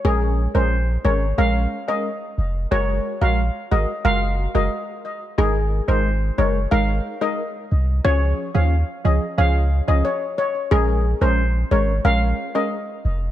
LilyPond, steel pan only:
\new Staff \with { instrumentName = "Steel pan" } { \time 4/4 \key bes \minor \tempo 4 = 90 aes'16 r8 c''16 r8 des''16 r16 f''16 r8 ees''16 r4 | des''16 r8 f''16 r8 ees''16 r16 f''16 r8 ees''16 r4 | aes'16 r8 c''16 r8 des''16 r16 f''16 r8 ees''16 r4 | des''16 r8 f''16 r8 ees''16 r16 f''16 r8 ees''16 des''16 r16 des''16 r16 |
aes'16 r8 c''16 r8 des''16 r16 f''16 r8 ees''16 r4 | }